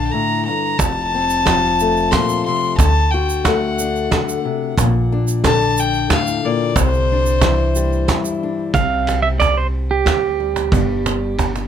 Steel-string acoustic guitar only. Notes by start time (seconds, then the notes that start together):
Already playing: D3 D4
0.13 A2
0.47 G2
0.80 F2
1.15 C4
1.46 F3
1.81 A3
2.14 A#2
2.47 C3
2.80 D3
3.14 F#4
3.47 A3
3.80 D4
4.12 D3
4.45 C3
4.78 A#2
5.12 D4
5.45 D3
6.11 A2
6.45 A#2
6.77 C3
7.12 D4
7.43 E3
7.76 G3
8.09 G2 E4
8.43 D4
8.75 C3 C4
9.40 muted steel-string acoustic guitar stroke
10.07 muted steel-string acoustic guitar stroke
10.40 G3
10.73 G2 D4
11.40 muted steel-string acoustic guitar stroke